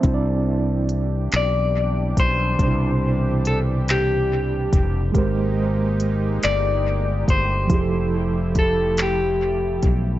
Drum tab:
HH |x-xx-x|x-xx-x|x-xx-x|x-xx-x|
CP |---x--|---x--|---x--|---x--|
BD |o----o|o----o|o----o|o-o--o|